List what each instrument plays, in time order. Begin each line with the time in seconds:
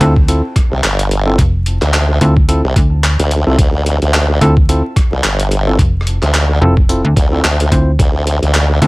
0.01 fm bass D2, tine electric piano C4 E4 F4 A4, closed hi-hat
0.16 kick
0.28 tine electric piano C4 E4 F4 A4, closed hi-hat
0.56 kick, cross-stick, closed hi-hat
0.72 wobble bass C2
0.84 wobble bass G1, clap, closed hi-hat
0.99 closed hi-hat
1.11 closed hi-hat
1.26 tine electric piano C4 E4 F4 A4
1.38 fm bass F1, kick, closed hi-hat
1.66 closed hi-hat
1.82 wobble bass D2, clap, closed hi-hat
1.94 clap, closed hi-hat
2.21 fm bass D2, tine electric piano C4 E4 F4 A4, closed hi-hat
2.37 kick
2.49 tine electric piano C4 E4 F4 A4, closed hi-hat
2.64 wobble bass C2
2.76 fm bass D2, kick, closed hi-hat
3.04 clap, closed hi-hat
3.19 wobble bass D2, closed hi-hat
3.31 closed hi-hat
3.47 wobble bass C2, tine electric piano C4 E4 F4 A4
3.58 wobble bass D2, kick, closed hi-hat
3.86 closed hi-hat
4.02 wobble bass D2, closed hi-hat
4.14 clap, closed hi-hat
4.41 fm bass D2, tine electric piano C4 E4 F4 A4, closed hi-hat
4.57 kick
4.69 tine electric piano C4 E4 F4 A4, closed hi-hat
4.96 kick, cross-stick, closed hi-hat
5.12 wobble bass C2
5.24 wobble bass G1, clap, closed hi-hat
5.40 closed hi-hat
5.51 closed hi-hat
5.67 tine electric piano C4 E4 F4 A4
5.79 fm bass F1, kick, closed hi-hat
6.01 cross-stick
6.07 closed hi-hat
6.22 wobble bass D2, clap, closed hi-hat
6.34 clap, closed hi-hat
6.61 fm bass F1, tine electric piano C4 E4 F4 A4
6.77 kick
6.89 tine electric piano C4 E4 F4 A4, closed hi-hat
7.05 fm bass D2
7.16 wobble bass D2, kick, closed hi-hat
7.32 tine electric piano C4 E4 F4 A4
7.44 wobble bass D2, clap, closed hi-hat
7.60 closed hi-hat
7.72 fm bass D2, tine electric piano C4 E4 F4 C5, kick, closed hi-hat
7.99 wobble bass D2, kick, closed hi-hat
8.27 closed hi-hat
8.42 wobble bass D2, closed hi-hat
8.54 clap, closed hi-hat
8.82 fm bass D2, tine electric piano C4 E4 F4 A4, closed hi-hat